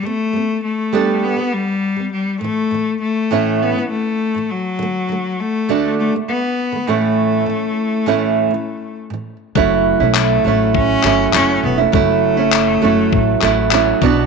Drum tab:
CP |--------|--------|--------|--------|
BD |--------|--------|--------|--------|

CP |--x--xx-|--x--xx-|
BD |o---o---|o---o--o|